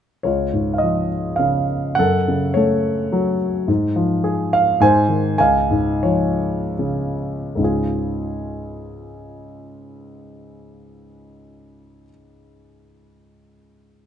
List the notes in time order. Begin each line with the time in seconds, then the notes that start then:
0.23 C#2 F4 C#5
0.53 G#2
0.74 F5
0.78 F3 D#5
1.36 C#3 F5
1.95 F#2 F#5
1.99 A4
2.28 C#3
2.54 A3 A4 C#5
3.12 F#3
3.68 G#2
3.96 F3
4.24 G#4
4.53 F5
4.80 G#2 C5 G#5
5.09 D#3
5.38 C#2 F5 G#5
5.71 G#2
6.03 F3 C#5
6.79 C#3
7.55 C#2 G#2 C#3
7.61 G#3 F4 G#4